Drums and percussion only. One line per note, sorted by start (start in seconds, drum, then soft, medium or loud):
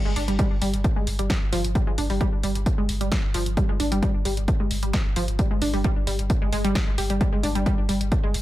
0.16 open hi-hat loud
0.28 closed hi-hat medium
0.39 kick loud
0.39 closed hi-hat medium
0.62 open hi-hat loud
0.74 closed hi-hat medium
0.84 kick loud
0.84 closed hi-hat medium
1.07 open hi-hat loud
1.19 closed hi-hat medium
1.30 kick loud
1.30 snare loud
1.30 closed hi-hat medium
1.53 open hi-hat loud
1.64 closed hi-hat medium
1.75 kick loud
1.75 closed hi-hat medium
1.98 open hi-hat loud
2.10 open hi-hat medium
2.21 kick loud
2.21 closed hi-hat medium
2.43 open hi-hat loud
2.55 closed hi-hat medium
2.66 kick loud
2.66 closed hi-hat medium
2.89 open hi-hat loud
3.01 closed hi-hat medium
3.12 kick loud
3.12 snare loud
3.12 closed hi-hat medium
3.34 open hi-hat loud
3.46 closed hi-hat medium
3.57 kick loud
3.57 closed hi-hat medium
3.80 open hi-hat loud
3.92 closed hi-hat medium
4.03 kick loud
4.03 closed hi-hat medium
4.25 open hi-hat loud
4.37 closed hi-hat medium
4.48 kick loud
4.48 closed hi-hat medium
4.71 open hi-hat loud
4.83 closed hi-hat medium
4.93 kick loud
4.93 snare loud
4.93 closed hi-hat medium
5.16 open hi-hat loud
5.28 closed hi-hat medium
5.39 kick loud
5.39 closed hi-hat medium
5.62 open hi-hat loud
5.74 open hi-hat medium
5.84 kick loud
5.84 closed hi-hat medium
6.07 open hi-hat loud
6.19 closed hi-hat medium
6.30 kick loud
6.30 closed hi-hat medium
6.53 open hi-hat loud
6.65 closed hi-hat medium
6.75 kick loud
6.75 snare loud
6.75 closed hi-hat medium
6.98 open hi-hat loud
7.10 closed hi-hat medium
7.21 kick loud
7.21 closed hi-hat medium
7.43 open hi-hat loud
7.55 closed hi-hat medium
7.66 kick loud
7.66 closed hi-hat medium
7.89 open hi-hat loud
8.01 closed hi-hat medium
8.12 kick loud
8.12 closed hi-hat medium
8.34 open hi-hat loud